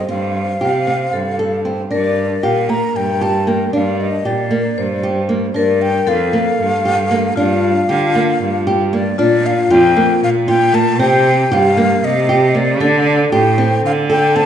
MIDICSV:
0, 0, Header, 1, 5, 480
1, 0, Start_track
1, 0, Key_signature, -2, "minor"
1, 0, Tempo, 518583
1, 86, Time_signature, 7, 3, 24, 8
1, 13381, End_track
2, 0, Start_track
2, 0, Title_t, "Flute"
2, 0, Program_c, 0, 73
2, 90, Note_on_c, 0, 77, 71
2, 1497, Note_off_c, 0, 77, 0
2, 1771, Note_on_c, 0, 74, 76
2, 2256, Note_on_c, 0, 77, 74
2, 2270, Note_off_c, 0, 74, 0
2, 2495, Note_on_c, 0, 82, 81
2, 2508, Note_off_c, 0, 77, 0
2, 2742, Note_on_c, 0, 79, 75
2, 2756, Note_off_c, 0, 82, 0
2, 2984, Note_on_c, 0, 81, 80
2, 2998, Note_off_c, 0, 79, 0
2, 3221, Note_on_c, 0, 79, 73
2, 3235, Note_off_c, 0, 81, 0
2, 3460, Note_off_c, 0, 79, 0
2, 3465, Note_on_c, 0, 77, 73
2, 3707, Note_on_c, 0, 75, 70
2, 3721, Note_off_c, 0, 77, 0
2, 3948, Note_on_c, 0, 74, 64
2, 3962, Note_off_c, 0, 75, 0
2, 4907, Note_off_c, 0, 74, 0
2, 5145, Note_on_c, 0, 74, 83
2, 5383, Note_on_c, 0, 79, 92
2, 5397, Note_off_c, 0, 74, 0
2, 5632, Note_on_c, 0, 77, 86
2, 5646, Note_off_c, 0, 79, 0
2, 6815, Note_off_c, 0, 77, 0
2, 6820, Note_on_c, 0, 77, 84
2, 7995, Note_off_c, 0, 77, 0
2, 8269, Note_on_c, 0, 74, 77
2, 8490, Note_off_c, 0, 74, 0
2, 8512, Note_on_c, 0, 74, 84
2, 8758, Note_on_c, 0, 77, 85
2, 8772, Note_off_c, 0, 74, 0
2, 8988, Note_on_c, 0, 79, 93
2, 9002, Note_off_c, 0, 77, 0
2, 9465, Note_off_c, 0, 79, 0
2, 9474, Note_on_c, 0, 77, 89
2, 9529, Note_off_c, 0, 77, 0
2, 9707, Note_on_c, 0, 79, 94
2, 9947, Note_on_c, 0, 81, 100
2, 9961, Note_off_c, 0, 79, 0
2, 10184, Note_off_c, 0, 81, 0
2, 10196, Note_on_c, 0, 79, 97
2, 10674, Note_on_c, 0, 77, 92
2, 10688, Note_off_c, 0, 79, 0
2, 11148, Note_on_c, 0, 75, 90
2, 11162, Note_off_c, 0, 77, 0
2, 11630, Note_on_c, 0, 74, 85
2, 11644, Note_off_c, 0, 75, 0
2, 11863, Note_off_c, 0, 74, 0
2, 11868, Note_on_c, 0, 74, 81
2, 12307, Note_off_c, 0, 74, 0
2, 12344, Note_on_c, 0, 79, 90
2, 12784, Note_off_c, 0, 79, 0
2, 12827, Note_on_c, 0, 77, 87
2, 12882, Note_off_c, 0, 77, 0
2, 13061, Note_on_c, 0, 79, 92
2, 13291, Note_on_c, 0, 81, 97
2, 13304, Note_off_c, 0, 79, 0
2, 13381, Note_off_c, 0, 81, 0
2, 13381, End_track
3, 0, Start_track
3, 0, Title_t, "Vibraphone"
3, 0, Program_c, 1, 11
3, 0, Note_on_c, 1, 72, 86
3, 1047, Note_on_c, 1, 69, 62
3, 1116, Note_off_c, 1, 72, 0
3, 1497, Note_off_c, 1, 69, 0
3, 1773, Note_on_c, 1, 70, 75
3, 4423, Note_on_c, 1, 72, 87
3, 4501, Note_off_c, 1, 70, 0
3, 5107, Note_off_c, 1, 72, 0
3, 5146, Note_on_c, 1, 70, 85
3, 5617, Note_on_c, 1, 69, 79
3, 5640, Note_off_c, 1, 70, 0
3, 6785, Note_off_c, 1, 69, 0
3, 6811, Note_on_c, 1, 65, 66
3, 8221, Note_off_c, 1, 65, 0
3, 8498, Note_on_c, 1, 65, 71
3, 10182, Note_on_c, 1, 67, 79
3, 10229, Note_off_c, 1, 65, 0
3, 11859, Note_on_c, 1, 69, 92
3, 11907, Note_off_c, 1, 67, 0
3, 13381, Note_off_c, 1, 69, 0
3, 13381, End_track
4, 0, Start_track
4, 0, Title_t, "Nylon-string guitar"
4, 0, Program_c, 2, 24
4, 79, Note_on_c, 2, 60, 67
4, 387, Note_off_c, 2, 60, 0
4, 564, Note_on_c, 2, 67, 67
4, 718, Note_off_c, 2, 67, 0
4, 806, Note_on_c, 2, 60, 60
4, 1112, Note_off_c, 2, 60, 0
4, 1287, Note_on_c, 2, 69, 62
4, 1441, Note_off_c, 2, 69, 0
4, 1527, Note_on_c, 2, 60, 57
4, 1681, Note_off_c, 2, 60, 0
4, 1764, Note_on_c, 2, 62, 65
4, 2072, Note_off_c, 2, 62, 0
4, 2251, Note_on_c, 2, 67, 67
4, 2405, Note_off_c, 2, 67, 0
4, 2489, Note_on_c, 2, 58, 60
4, 2797, Note_off_c, 2, 58, 0
4, 2974, Note_on_c, 2, 67, 65
4, 3127, Note_off_c, 2, 67, 0
4, 3211, Note_on_c, 2, 58, 64
4, 3366, Note_off_c, 2, 58, 0
4, 3454, Note_on_c, 2, 62, 72
4, 3761, Note_off_c, 2, 62, 0
4, 3936, Note_on_c, 2, 67, 69
4, 4090, Note_off_c, 2, 67, 0
4, 4172, Note_on_c, 2, 58, 67
4, 4480, Note_off_c, 2, 58, 0
4, 4659, Note_on_c, 2, 67, 66
4, 4812, Note_off_c, 2, 67, 0
4, 4895, Note_on_c, 2, 58, 67
4, 5050, Note_off_c, 2, 58, 0
4, 5130, Note_on_c, 2, 62, 70
4, 5439, Note_off_c, 2, 62, 0
4, 5619, Note_on_c, 2, 65, 72
4, 5773, Note_off_c, 2, 65, 0
4, 5860, Note_on_c, 2, 58, 69
4, 6166, Note_off_c, 2, 58, 0
4, 6343, Note_on_c, 2, 67, 69
4, 6496, Note_off_c, 2, 67, 0
4, 6577, Note_on_c, 2, 58, 71
4, 6732, Note_off_c, 2, 58, 0
4, 6823, Note_on_c, 2, 62, 76
4, 7129, Note_off_c, 2, 62, 0
4, 7302, Note_on_c, 2, 67, 76
4, 7456, Note_off_c, 2, 67, 0
4, 7544, Note_on_c, 2, 58, 66
4, 7849, Note_off_c, 2, 58, 0
4, 8024, Note_on_c, 2, 67, 73
4, 8176, Note_off_c, 2, 67, 0
4, 8264, Note_on_c, 2, 58, 70
4, 8417, Note_off_c, 2, 58, 0
4, 8503, Note_on_c, 2, 62, 83
4, 8808, Note_off_c, 2, 62, 0
4, 8982, Note_on_c, 2, 65, 73
4, 9135, Note_off_c, 2, 65, 0
4, 9223, Note_on_c, 2, 58, 69
4, 9527, Note_off_c, 2, 58, 0
4, 9699, Note_on_c, 2, 65, 71
4, 9852, Note_off_c, 2, 65, 0
4, 9937, Note_on_c, 2, 58, 73
4, 10091, Note_off_c, 2, 58, 0
4, 10176, Note_on_c, 2, 60, 85
4, 10481, Note_off_c, 2, 60, 0
4, 10658, Note_on_c, 2, 67, 84
4, 10811, Note_off_c, 2, 67, 0
4, 10895, Note_on_c, 2, 58, 75
4, 11200, Note_off_c, 2, 58, 0
4, 11375, Note_on_c, 2, 67, 78
4, 11528, Note_off_c, 2, 67, 0
4, 11613, Note_on_c, 2, 58, 72
4, 11766, Note_off_c, 2, 58, 0
4, 11851, Note_on_c, 2, 62, 86
4, 12156, Note_off_c, 2, 62, 0
4, 12331, Note_on_c, 2, 67, 89
4, 12484, Note_off_c, 2, 67, 0
4, 12569, Note_on_c, 2, 60, 83
4, 12874, Note_off_c, 2, 60, 0
4, 13047, Note_on_c, 2, 69, 74
4, 13200, Note_off_c, 2, 69, 0
4, 13289, Note_on_c, 2, 60, 76
4, 13381, Note_off_c, 2, 60, 0
4, 13381, End_track
5, 0, Start_track
5, 0, Title_t, "Cello"
5, 0, Program_c, 3, 42
5, 85, Note_on_c, 3, 43, 80
5, 531, Note_off_c, 3, 43, 0
5, 567, Note_on_c, 3, 48, 73
5, 1012, Note_off_c, 3, 48, 0
5, 1048, Note_on_c, 3, 43, 71
5, 1735, Note_off_c, 3, 43, 0
5, 1772, Note_on_c, 3, 43, 79
5, 2217, Note_off_c, 3, 43, 0
5, 2252, Note_on_c, 3, 46, 73
5, 2698, Note_off_c, 3, 46, 0
5, 2730, Note_on_c, 3, 43, 76
5, 3418, Note_off_c, 3, 43, 0
5, 3451, Note_on_c, 3, 43, 83
5, 3899, Note_off_c, 3, 43, 0
5, 3936, Note_on_c, 3, 46, 74
5, 4382, Note_off_c, 3, 46, 0
5, 4420, Note_on_c, 3, 43, 73
5, 5106, Note_off_c, 3, 43, 0
5, 5139, Note_on_c, 3, 43, 83
5, 5585, Note_off_c, 3, 43, 0
5, 5621, Note_on_c, 3, 41, 83
5, 6066, Note_off_c, 3, 41, 0
5, 6101, Note_on_c, 3, 43, 79
5, 6787, Note_off_c, 3, 43, 0
5, 6822, Note_on_c, 3, 43, 95
5, 7267, Note_off_c, 3, 43, 0
5, 7307, Note_on_c, 3, 50, 84
5, 7749, Note_off_c, 3, 50, 0
5, 7781, Note_on_c, 3, 43, 83
5, 8466, Note_off_c, 3, 43, 0
5, 8505, Note_on_c, 3, 46, 93
5, 8947, Note_off_c, 3, 46, 0
5, 8983, Note_on_c, 3, 41, 89
5, 9426, Note_off_c, 3, 41, 0
5, 9462, Note_on_c, 3, 46, 91
5, 10182, Note_on_c, 3, 48, 93
5, 10196, Note_off_c, 3, 46, 0
5, 10624, Note_off_c, 3, 48, 0
5, 10660, Note_on_c, 3, 43, 90
5, 11102, Note_off_c, 3, 43, 0
5, 11140, Note_on_c, 3, 48, 92
5, 11854, Note_on_c, 3, 50, 102
5, 11867, Note_off_c, 3, 48, 0
5, 12296, Note_off_c, 3, 50, 0
5, 12330, Note_on_c, 3, 45, 94
5, 12773, Note_off_c, 3, 45, 0
5, 12811, Note_on_c, 3, 50, 89
5, 13381, Note_off_c, 3, 50, 0
5, 13381, End_track
0, 0, End_of_file